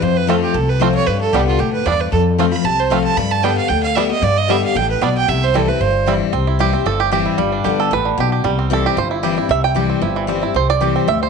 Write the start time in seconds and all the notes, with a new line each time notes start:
0.02 F2 C5
0.17 B4
0.27 F3 A3 C4 F4 A4
0.42 G4
0.54 C2 C3 A4
0.69 B4
0.80 F3 A3 C4 F4 C5
0.95 C#5
1.06 G2 B4
1.21 A4
1.33 C2 D3 G3 B3 D4 G4
1.47 F4
1.59 D2 A2 G4
1.73 B4
1.85 E2 G2 G3 B3 D4 D5
2.00 B4
2.12 F2 A4
2.38 F3 A3 C4 F4
2.52 C4 F4 B5
2.64 C2 C3 A5
2.80 C5
2.90 F3 A3 C4 F4 F5
3.04 A5
3.17 G2 B5
3.31 A5
3.43 D3 G3 B3 D4 G4 G5
3.57 F5
3.69 D2 D3 G5
3.83 F5
3.95 D3 G3 B3 D4 G4 E5
4.10 B3 G4 D#5
4.22 G2 D5
4.38 D#5
4.48 D3 G3 B3 D4 G4 E5
4.64 F5
4.75 A1 A2 G5
4.90 B4
5.01 B1 B2 G3 B3 D4 D5
5.17 G5
5.28 C2 C3 E5
5.43 C5
5.54 E3 G3 C4 E4 A4
5.68 C4 E4 B4
5.80 G1 G2 C5
6.06 E3 G3 C4 E4
6.32 C2 C3 C4
6.47 E4
6.59 E3 G3 C4 E4 G4
6.73 C4 E4
6.85 G1 G2 A4
7.00 G4
7.11 E3 G3 C4 E4 G4
7.26 E4
7.38 G1 G2 G3
7.52 D4
7.64 G1 D3 G3 B3 G4
7.80 A4
7.91 A1 A2 B4
8.05 D3
8.18 B1 B2 G4
8.32 G4
8.44 C2 C3 G3
8.59 C4
8.70 E3 G3 C4 E4 A4
8.86 G4
8.97 G1 G2 C5
9.11 E4
9.23 E3 G3 C4 E4 G4
9.37 C4 E4
9.49 C2 C3 E5
9.64 G5
9.75 E3 G3 C4 E4 G4
9.90 C4
10.01 G1 G2 E4
10.16 E3
10.27 E3 G3 C4 E4
10.41 C4 E4
10.54 C2 C3 C5
10.70 D5
10.81 E3 G3 C4 E4 G4
10.96 C4
11.07 D2 G2 E5
11.23 C5